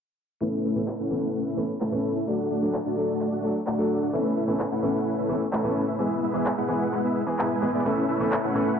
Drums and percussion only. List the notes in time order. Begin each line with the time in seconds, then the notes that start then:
0.88 clap
1.81 clap
2.74 clap
3.20 clap
3.67 clap
4.60 clap
5.53 clap
6.46 clap
6.92 clap
7.39 clap
8.32 clap